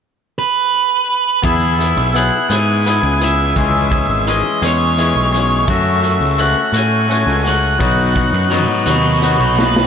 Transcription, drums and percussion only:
1.44 kick, closed hi-hat
1.80 closed hi-hat
2.15 closed hi-hat
2.50 closed hi-hat
2.86 closed hi-hat
3.21 closed hi-hat
3.56 kick, closed hi-hat
3.92 kick, closed hi-hat
4.28 closed hi-hat
4.63 closed hi-hat
4.98 closed hi-hat
5.34 closed hi-hat
5.68 kick, closed hi-hat
6.03 closed hi-hat
6.38 closed hi-hat
6.74 closed hi-hat
7.11 closed hi-hat
7.46 closed hi-hat
7.80 kick, closed hi-hat
8.16 kick, closed hi-hat
8.51 closed hi-hat
8.86 closed hi-hat
9.22 closed hi-hat
9.59 snare
9.76 snare

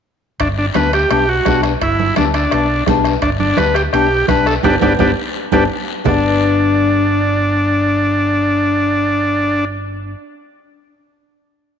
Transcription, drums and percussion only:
0.40 bombo low, bombo rim, high timbale, long guiro
0.74 bombo rim, high conga, high timbale, short guiro
0.93 bombo rim, high timbale, short guiro
1.10 bombo rim, high timbale, long guiro
1.45 bombo low, bombo rim, high conga, high timbale, low timbale, short guiro
1.63 bombo rim, high timbale, short guiro
1.81 bombo low, bombo rim, high timbale, long guiro
2.00 high conga
2.16 bombo rim, high conga, high timbale, short guiro
2.34 bombo rim, high timbale, short guiro
2.51 bombo rim, high timbale, long guiro
2.86 bombo low, bombo rim, high conga, high timbale, low timbale, short guiro
3.04 bombo rim, high timbale, short guiro
3.22 bombo low, bombo rim, high timbale, long guiro
3.40 high conga
3.57 bombo rim, high conga, high timbale, short guiro
3.75 bombo rim, high timbale, short guiro
3.93 bombo rim, high timbale, long guiro
4.28 bombo low, bombo rim, high conga, high timbale, short guiro
4.46 bombo rim, high timbale, short guiro
4.63 bombo low, high conga, high timbale, long guiro
4.81 bombo low, high conga, high timbale, long guiro
4.99 bombo low, high conga, high timbale, long guiro
5.52 bombo low, high conga, high timbale, long guiro
6.05 bombo low, low conga, low timbale, long guiro

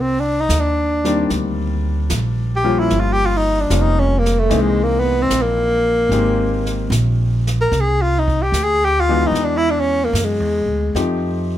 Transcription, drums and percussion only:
0.50 snare, hi-hat pedal
1.05 snare
1.30 brush sweep, snare
2.10 snare, hi-hat pedal
2.90 brush sweep, snare
3.70 snare, hi-hat pedal
4.26 snare
4.51 brush sweep, snare
5.31 snare, hi-hat pedal
6.11 brush sweep, snare
6.66 snare
6.92 snare, hi-hat pedal
7.47 snare
7.72 brush sweep, snare
8.28 kick
8.54 snare, hi-hat pedal
9.35 brush sweep, snare
10.15 snare, hi-hat pedal
10.96 brush sweep, snare

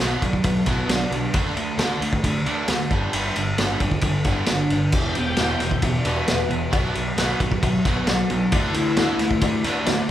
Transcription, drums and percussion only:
0.22 kick, ride
0.33 kick
0.44 kick, ride
0.66 kick, snare, ride
0.89 snare, ride
1.12 ride
1.34 kick, ride
1.57 ride
1.79 snare, ride
2.02 ride
2.13 kick
2.24 kick, ride
2.46 ride
2.68 snare, ride
2.91 kick, ride
3.13 ride
3.36 ride
3.58 snare, ride
3.80 kick, ride
3.91 kick
4.01 kick, ride
4.24 kick, snare, ride
4.46 snare, ride
4.70 ride
4.92 kick, crash
5.15 ride
5.37 snare, ride
5.60 snare, ride
5.71 kick
5.82 kick, ride
6.05 ride
6.28 snare, ride
6.50 ride
6.73 kick, ride
6.95 ride
7.18 snare, ride
7.40 kick, ride
7.52 kick
7.63 kick, ride
7.85 kick, snare, ride
8.07 snare, ride
8.30 ride
8.52 kick, ride
8.74 ride
8.97 snare, ride
9.19 snare, ride
9.31 kick
9.41 kick, ride
9.64 snare, ride
9.86 snare, ride

